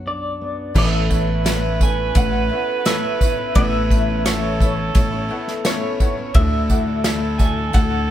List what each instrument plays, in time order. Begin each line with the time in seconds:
Already playing: upright bass B1, steel-string acoustic guitar F#2 F#3 B3 F#4
0.06 steel-string acoustic guitar D4, clean electric guitar D5
0.41 steel-string acoustic guitar B3
0.74 upright piano A1 A2 B3 E4 A4 C#5 E5, upright bass A1, twelve-string acoustic guitar A2 A3 B3 C#4 E4, cor anglais B4, clean electric guitar E5, kick, crash
1.10 upright piano B3 E4 A4 C#5 E5, kick, tambourine
1.28 twelve-string acoustic guitar B3 C#4 E4
1.44 twelve-string acoustic guitar A2 A3 B3 C#4 E4, upright piano B3 E4 A4 C#5 E5, snare, ride bell, tambourine
1.80 twelve-string acoustic guitar A3 B3 C#4 E4, upright piano B3 E4 A4 C#5 E5, clean electric guitar G#5, kick, tambourine
1.96 twelve-string acoustic guitar B3 C#4 E4
2.15 upright bass A1, upright piano B3 E4 A4 C#5 E5, clean electric guitar F#5, kick, ride bell, tambourine
2.31 twelve-string acoustic guitar B3 C#4 E4
2.49 twelve-string acoustic guitar A3 B3 C#4 E4, upright piano B3 E4 A4 C#5 E5
2.85 twelve-string acoustic guitar A2 A3 B3 C#4 E4, upright piano B3 E4 A4 C#5 E5, clean electric guitar E5, snare, ride bell, tambourine
3.19 twelve-string acoustic guitar A3 B3 C#4 E4, upright piano B3 E4 A4 C#5 E5, kick, tambourine
3.37 twelve-string acoustic guitar B3 C#4 E4
3.54 upright bass A1, upright piano A1 A2 B3 E4 A4 C#5 F#5, twelve-string acoustic guitar A2 A3 B3 C#4 E4, clean electric guitar E5, kick, ride bell
3.90 upright piano B3 E4 A4 C#5 E5, kick, tambourine
4.09 twelve-string acoustic guitar B3 C#4 E4
4.25 twelve-string acoustic guitar A2 A3 B3 C#4 E4, upright piano B3 E4 A4 C#5 F#5, cor anglais A4, clean electric guitar C#5, snare, ride bell, tambourine
4.59 twelve-string acoustic guitar A3 B3 C#4 E4, upright piano B3 E4 A4 C#5 E5, kick, tambourine
4.75 twelve-string acoustic guitar B3 C#4 E4
4.95 upright bass A1, upright piano B3 E4 A4 C#5 E5, kick, ride bell, tambourine
5.11 twelve-string acoustic guitar B3 C#4 E4
5.29 twelve-string acoustic guitar A3 B3 C#4 E4, upright piano B3 E4 A4 C#5 F#5
5.48 snare
5.65 twelve-string acoustic guitar A2 A3 B3 C#4 E4, upright piano B3 E4 A4 C#5 E5, clean electric guitar C#5, snare, ride bell, tambourine
5.99 twelve-string acoustic guitar A3 B3 C#4 E4, upright piano B3 E4 A4 C#5 F#5, kick, tambourine
6.17 twelve-string acoustic guitar B3 C#4 E4
6.34 upright bass D2, upright piano D2 D3 A3 E4 F#4 D5 E5, twelve-string acoustic guitar D3 A3 D4 E4 F#4, cor anglais A4, clean electric guitar E5, kick, ride bell
6.70 upright piano A3 E4 F#4 D5 F#5, kick, tambourine
6.87 twelve-string acoustic guitar D4 E4 F#4
7.04 twelve-string acoustic guitar D3 A3 D4 E4 F#4, upright piano A3 E4 F#4 D5 E5, snare, ride bell, tambourine
7.38 upright piano A3 E4 F#4 D5 E5, twelve-string acoustic guitar A3 D4 E4 F#4, clean electric guitar G#5, kick, tambourine
7.57 twelve-string acoustic guitar D4 E4 F#4
7.73 upright bass D2, upright piano A3 E4 F#4 D5 F#5, clean electric guitar F#5, kick, ride bell, tambourine
7.90 twelve-string acoustic guitar D4 E4 F#4